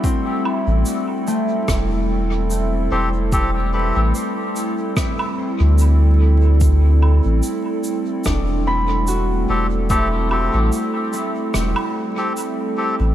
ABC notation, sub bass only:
X:1
M:4/4
L:1/16
Q:"Swing 16ths" 1/4=73
K:Ador
V:1 name="Sub bass" clef=bass
z3 A,,, z4 E,,,6 E,,,2- | E,,,3 A,,, z6 z D,,4- D,,- | D,,3 A,,, z4 E,,,6 E,,,2- | E,,,3 A,,, z4 E,,, z6 A,,, |]